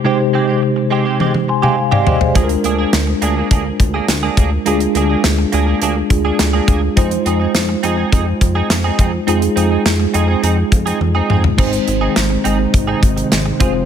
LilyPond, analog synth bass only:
\new Staff \with { instrumentName = "Analog synth bass" } { \clef bass \time 4/4 \key aes \lydian \tempo 4 = 104 r1 | d,8 d,8 d,8 d,8 d,8 d,8 d,8 d,8 | d,8 d,8 d,8 d,8 d,8 d,8 d,8 d,8 | f,8 f,8 f,8 f,8 f,8 f,8 f,8 f,8 |
f,8 f,8 f,8 f,8 f,8 f,8 f,8 f,8 | aes,,8 aes,,8 aes,,8 aes,,8 aes,,8 aes,,8 aes,,8 f,,8 | }